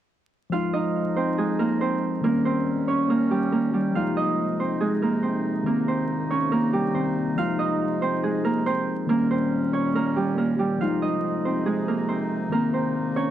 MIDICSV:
0, 0, Header, 1, 4, 480
1, 0, Start_track
1, 0, Key_signature, -4, "minor"
1, 0, Tempo, 428571
1, 582, Time_signature, 4, 2, 24, 8
1, 14903, End_track
2, 0, Start_track
2, 0, Title_t, "Harp"
2, 0, Program_c, 0, 46
2, 586, Note_on_c, 0, 77, 100
2, 594, Note_on_c, 0, 65, 84
2, 823, Note_on_c, 0, 75, 80
2, 832, Note_on_c, 0, 63, 69
2, 1303, Note_on_c, 0, 72, 83
2, 1312, Note_on_c, 0, 60, 68
2, 1546, Note_on_c, 0, 68, 85
2, 1555, Note_on_c, 0, 56, 61
2, 1781, Note_on_c, 0, 70, 88
2, 1790, Note_on_c, 0, 58, 68
2, 2019, Note_off_c, 0, 72, 0
2, 2024, Note_on_c, 0, 72, 94
2, 2028, Note_off_c, 0, 60, 0
2, 2033, Note_on_c, 0, 60, 70
2, 2450, Note_off_c, 0, 77, 0
2, 2500, Note_off_c, 0, 70, 0
2, 2505, Note_on_c, 0, 70, 107
2, 2510, Note_off_c, 0, 58, 0
2, 2514, Note_on_c, 0, 58, 84
2, 2558, Note_off_c, 0, 56, 0
2, 2739, Note_off_c, 0, 72, 0
2, 2744, Note_on_c, 0, 72, 86
2, 2747, Note_off_c, 0, 60, 0
2, 2752, Note_on_c, 0, 60, 67
2, 2820, Note_off_c, 0, 75, 0
2, 3222, Note_on_c, 0, 73, 79
2, 3231, Note_on_c, 0, 61, 62
2, 3289, Note_off_c, 0, 60, 0
2, 3289, Note_off_c, 0, 72, 0
2, 3420, Note_off_c, 0, 65, 0
2, 3464, Note_off_c, 0, 70, 0
2, 3469, Note_on_c, 0, 70, 99
2, 3473, Note_off_c, 0, 58, 0
2, 3477, Note_on_c, 0, 58, 66
2, 3702, Note_on_c, 0, 67, 77
2, 3711, Note_on_c, 0, 55, 62
2, 3769, Note_off_c, 0, 68, 0
2, 3860, Note_off_c, 0, 63, 0
2, 3939, Note_off_c, 0, 70, 0
2, 3943, Note_on_c, 0, 70, 81
2, 3947, Note_off_c, 0, 58, 0
2, 3951, Note_on_c, 0, 58, 60
2, 4175, Note_off_c, 0, 67, 0
2, 4176, Note_off_c, 0, 55, 0
2, 4180, Note_on_c, 0, 67, 70
2, 4190, Note_on_c, 0, 55, 61
2, 4424, Note_on_c, 0, 77, 97
2, 4433, Note_on_c, 0, 65, 78
2, 4478, Note_off_c, 0, 55, 0
2, 4664, Note_on_c, 0, 75, 84
2, 4674, Note_on_c, 0, 63, 57
2, 5147, Note_on_c, 0, 72, 73
2, 5155, Note_on_c, 0, 60, 55
2, 5214, Note_off_c, 0, 61, 0
2, 5214, Note_off_c, 0, 73, 0
2, 5380, Note_on_c, 0, 68, 85
2, 5389, Note_on_c, 0, 56, 69
2, 5448, Note_off_c, 0, 67, 0
2, 5620, Note_off_c, 0, 70, 0
2, 5625, Note_on_c, 0, 70, 83
2, 5629, Note_off_c, 0, 58, 0
2, 5633, Note_on_c, 0, 58, 71
2, 5850, Note_off_c, 0, 72, 0
2, 5854, Note_on_c, 0, 72, 75
2, 5860, Note_off_c, 0, 60, 0
2, 5864, Note_on_c, 0, 60, 61
2, 6288, Note_off_c, 0, 77, 0
2, 6338, Note_off_c, 0, 70, 0
2, 6342, Note_on_c, 0, 70, 94
2, 6346, Note_off_c, 0, 58, 0
2, 6351, Note_on_c, 0, 58, 73
2, 6398, Note_off_c, 0, 56, 0
2, 6580, Note_off_c, 0, 72, 0
2, 6584, Note_on_c, 0, 72, 71
2, 6588, Note_off_c, 0, 60, 0
2, 6592, Note_on_c, 0, 60, 54
2, 6662, Note_off_c, 0, 75, 0
2, 7061, Note_on_c, 0, 73, 84
2, 7070, Note_on_c, 0, 61, 71
2, 7129, Note_off_c, 0, 60, 0
2, 7129, Note_off_c, 0, 72, 0
2, 7259, Note_off_c, 0, 65, 0
2, 7296, Note_off_c, 0, 70, 0
2, 7301, Note_on_c, 0, 70, 86
2, 7305, Note_off_c, 0, 58, 0
2, 7309, Note_on_c, 0, 58, 66
2, 7539, Note_on_c, 0, 67, 80
2, 7548, Note_on_c, 0, 55, 65
2, 7606, Note_off_c, 0, 68, 0
2, 7702, Note_off_c, 0, 63, 0
2, 7781, Note_on_c, 0, 72, 76
2, 7791, Note_on_c, 0, 60, 54
2, 7848, Note_off_c, 0, 61, 0
2, 7848, Note_off_c, 0, 73, 0
2, 8264, Note_on_c, 0, 77, 101
2, 8273, Note_on_c, 0, 65, 81
2, 8318, Note_off_c, 0, 55, 0
2, 8500, Note_on_c, 0, 75, 82
2, 8510, Note_on_c, 0, 63, 67
2, 8976, Note_off_c, 0, 72, 0
2, 8980, Note_on_c, 0, 72, 88
2, 8985, Note_off_c, 0, 60, 0
2, 8989, Note_on_c, 0, 60, 68
2, 9223, Note_on_c, 0, 68, 85
2, 9233, Note_on_c, 0, 56, 61
2, 9290, Note_off_c, 0, 67, 0
2, 9454, Note_off_c, 0, 70, 0
2, 9459, Note_on_c, 0, 70, 92
2, 9462, Note_off_c, 0, 58, 0
2, 9467, Note_on_c, 0, 58, 66
2, 9698, Note_off_c, 0, 72, 0
2, 9702, Note_on_c, 0, 72, 94
2, 9707, Note_off_c, 0, 60, 0
2, 9712, Note_on_c, 0, 60, 70
2, 10128, Note_off_c, 0, 77, 0
2, 10177, Note_off_c, 0, 70, 0
2, 10182, Note_on_c, 0, 70, 114
2, 10186, Note_off_c, 0, 58, 0
2, 10191, Note_on_c, 0, 58, 85
2, 10238, Note_off_c, 0, 56, 0
2, 10419, Note_off_c, 0, 72, 0
2, 10424, Note_on_c, 0, 72, 85
2, 10428, Note_off_c, 0, 60, 0
2, 10432, Note_on_c, 0, 60, 69
2, 10498, Note_off_c, 0, 75, 0
2, 10898, Note_on_c, 0, 73, 80
2, 10908, Note_on_c, 0, 61, 61
2, 10965, Note_off_c, 0, 60, 0
2, 10965, Note_off_c, 0, 72, 0
2, 11099, Note_off_c, 0, 65, 0
2, 11143, Note_off_c, 0, 70, 0
2, 11147, Note_on_c, 0, 70, 97
2, 11152, Note_off_c, 0, 58, 0
2, 11156, Note_on_c, 0, 58, 66
2, 11380, Note_on_c, 0, 67, 77
2, 11389, Note_on_c, 0, 55, 65
2, 11448, Note_off_c, 0, 68, 0
2, 11538, Note_off_c, 0, 63, 0
2, 11620, Note_off_c, 0, 70, 0
2, 11625, Note_on_c, 0, 70, 82
2, 11628, Note_off_c, 0, 58, 0
2, 11633, Note_on_c, 0, 58, 62
2, 11855, Note_off_c, 0, 55, 0
2, 11855, Note_off_c, 0, 67, 0
2, 11860, Note_on_c, 0, 67, 69
2, 11869, Note_on_c, 0, 55, 62
2, 12106, Note_on_c, 0, 77, 98
2, 12114, Note_on_c, 0, 65, 76
2, 12158, Note_off_c, 0, 55, 0
2, 12346, Note_on_c, 0, 75, 83
2, 12356, Note_on_c, 0, 63, 60
2, 12825, Note_on_c, 0, 72, 72
2, 12834, Note_on_c, 0, 60, 55
2, 12892, Note_off_c, 0, 61, 0
2, 12892, Note_off_c, 0, 73, 0
2, 13058, Note_on_c, 0, 68, 90
2, 13067, Note_on_c, 0, 56, 67
2, 13125, Note_off_c, 0, 67, 0
2, 13300, Note_off_c, 0, 70, 0
2, 13304, Note_on_c, 0, 70, 81
2, 13308, Note_off_c, 0, 58, 0
2, 13312, Note_on_c, 0, 58, 72
2, 13531, Note_off_c, 0, 72, 0
2, 13535, Note_on_c, 0, 72, 79
2, 13540, Note_off_c, 0, 60, 0
2, 13544, Note_on_c, 0, 60, 58
2, 13970, Note_off_c, 0, 77, 0
2, 14020, Note_off_c, 0, 70, 0
2, 14025, Note_on_c, 0, 70, 99
2, 14029, Note_off_c, 0, 58, 0
2, 14034, Note_on_c, 0, 58, 70
2, 14078, Note_off_c, 0, 56, 0
2, 14260, Note_off_c, 0, 72, 0
2, 14264, Note_on_c, 0, 72, 71
2, 14268, Note_off_c, 0, 60, 0
2, 14273, Note_on_c, 0, 60, 56
2, 14344, Note_off_c, 0, 75, 0
2, 14740, Note_on_c, 0, 73, 89
2, 14749, Note_on_c, 0, 61, 71
2, 14807, Note_off_c, 0, 60, 0
2, 14807, Note_off_c, 0, 72, 0
2, 14903, Note_off_c, 0, 58, 0
2, 14903, Note_off_c, 0, 61, 0
2, 14903, Note_off_c, 0, 63, 0
2, 14903, Note_off_c, 0, 65, 0
2, 14903, Note_off_c, 0, 68, 0
2, 14903, Note_off_c, 0, 70, 0
2, 14903, Note_off_c, 0, 73, 0
2, 14903, End_track
3, 0, Start_track
3, 0, Title_t, "Tine electric piano"
3, 0, Program_c, 1, 4
3, 561, Note_on_c, 1, 53, 69
3, 588, Note_on_c, 1, 56, 60
3, 614, Note_on_c, 1, 63, 72
3, 773, Control_c, 1, 64, 127
3, 2453, Note_off_c, 1, 53, 0
3, 2467, Note_off_c, 1, 56, 0
3, 2475, Note_on_c, 1, 51, 65
3, 2480, Note_off_c, 1, 63, 0
3, 2501, Note_on_c, 1, 55, 62
3, 2516, Control_c, 1, 64, 0
3, 2527, Note_on_c, 1, 61, 74
3, 2697, Control_c, 1, 64, 127
3, 4370, Note_off_c, 1, 51, 0
3, 4383, Note_off_c, 1, 55, 0
3, 4396, Note_off_c, 1, 61, 0
3, 4399, Note_on_c, 1, 53, 62
3, 4425, Note_on_c, 1, 56, 57
3, 4437, Control_c, 1, 64, 0
3, 4451, Note_on_c, 1, 63, 75
3, 4623, Control_c, 1, 64, 127
3, 6292, Note_off_c, 1, 53, 0
3, 6305, Note_off_c, 1, 56, 0
3, 6312, Note_on_c, 1, 51, 64
3, 6318, Note_off_c, 1, 63, 0
3, 6338, Note_on_c, 1, 58, 62
3, 6357, Control_c, 1, 64, 0
3, 6365, Note_on_c, 1, 60, 74
3, 6560, Control_c, 1, 64, 127
3, 7738, Note_off_c, 1, 51, 0
3, 7751, Note_off_c, 1, 58, 0
3, 7765, Note_off_c, 1, 60, 0
3, 7766, Note_on_c, 1, 51, 52
3, 7779, Note_on_c, 1, 58, 44
3, 7792, Note_on_c, 1, 60, 59
3, 8238, Note_on_c, 1, 53, 68
3, 8254, Note_off_c, 1, 51, 0
3, 8260, Note_off_c, 1, 58, 0
3, 8265, Note_on_c, 1, 56, 60
3, 8267, Note_off_c, 1, 60, 0
3, 8278, Control_c, 1, 64, 0
3, 8445, Control_c, 1, 64, 127
3, 10132, Note_off_c, 1, 53, 0
3, 10145, Note_off_c, 1, 56, 0
3, 10152, Note_on_c, 1, 51, 67
3, 10178, Note_on_c, 1, 55, 61
3, 10196, Control_c, 1, 64, 0
3, 10204, Note_on_c, 1, 61, 75
3, 10365, Control_c, 1, 64, 127
3, 12048, Note_off_c, 1, 51, 0
3, 12061, Note_off_c, 1, 55, 0
3, 12075, Note_off_c, 1, 61, 0
3, 12078, Note_on_c, 1, 53, 62
3, 12103, Note_on_c, 1, 56, 57
3, 12116, Control_c, 1, 64, 0
3, 12130, Note_on_c, 1, 63, 75
3, 12326, Control_c, 1, 64, 127
3, 13971, Note_off_c, 1, 53, 0
3, 13984, Note_off_c, 1, 56, 0
3, 13994, Note_on_c, 1, 51, 64
3, 13998, Note_off_c, 1, 63, 0
3, 14020, Note_on_c, 1, 58, 63
3, 14034, Control_c, 1, 64, 0
3, 14046, Note_on_c, 1, 60, 75
3, 14203, Control_c, 1, 64, 127
3, 14903, Note_off_c, 1, 51, 0
3, 14903, Note_off_c, 1, 58, 0
3, 14903, Note_off_c, 1, 60, 0
3, 14903, End_track
4, 0, Start_track
4, 0, Title_t, "Woodwind section"
4, 0, Program_c, 2, 71
4, 583, Note_on_c, 2, 41, 79
4, 583, Note_on_c, 2, 53, 75
4, 583, Note_on_c, 2, 56, 74
4, 583, Note_on_c, 2, 63, 86
4, 2483, Note_off_c, 2, 41, 0
4, 2483, Note_off_c, 2, 53, 0
4, 2483, Note_off_c, 2, 56, 0
4, 2483, Note_off_c, 2, 63, 0
4, 2503, Note_on_c, 2, 39, 80
4, 2503, Note_on_c, 2, 51, 73
4, 2503, Note_on_c, 2, 55, 74
4, 2503, Note_on_c, 2, 61, 88
4, 4403, Note_off_c, 2, 39, 0
4, 4403, Note_off_c, 2, 51, 0
4, 4403, Note_off_c, 2, 61, 0
4, 4404, Note_off_c, 2, 55, 0
4, 4422, Note_on_c, 2, 41, 80
4, 4422, Note_on_c, 2, 48, 72
4, 4422, Note_on_c, 2, 56, 74
4, 4422, Note_on_c, 2, 63, 87
4, 6323, Note_off_c, 2, 41, 0
4, 6323, Note_off_c, 2, 56, 0
4, 6340, Note_on_c, 2, 36, 78
4, 6340, Note_on_c, 2, 58, 72
4, 8242, Note_off_c, 2, 36, 0
4, 8242, Note_off_c, 2, 58, 0
4, 8262, Note_on_c, 2, 56, 74
4, 8263, Note_on_c, 2, 41, 78
4, 9991, Note_off_c, 2, 41, 0
4, 9991, Note_off_c, 2, 48, 0
4, 9991, Note_off_c, 2, 56, 0
4, 9991, Note_off_c, 2, 63, 0
4, 10181, Note_on_c, 2, 39, 80
4, 10181, Note_on_c, 2, 46, 74
4, 10181, Note_on_c, 2, 55, 74
4, 10181, Note_on_c, 2, 61, 88
4, 12082, Note_off_c, 2, 39, 0
4, 12082, Note_off_c, 2, 46, 0
4, 12083, Note_off_c, 2, 55, 0
4, 12083, Note_off_c, 2, 61, 0
4, 12102, Note_on_c, 2, 48, 72
4, 12103, Note_on_c, 2, 41, 80
4, 12103, Note_on_c, 2, 56, 75
4, 12103, Note_on_c, 2, 63, 86
4, 14003, Note_off_c, 2, 41, 0
4, 14003, Note_off_c, 2, 56, 0
4, 14023, Note_on_c, 2, 58, 73
4, 14024, Note_on_c, 2, 36, 82
4, 14903, Note_off_c, 2, 36, 0
4, 14903, Note_off_c, 2, 48, 0
4, 14903, Note_off_c, 2, 58, 0
4, 14903, Note_off_c, 2, 63, 0
4, 14903, End_track
0, 0, End_of_file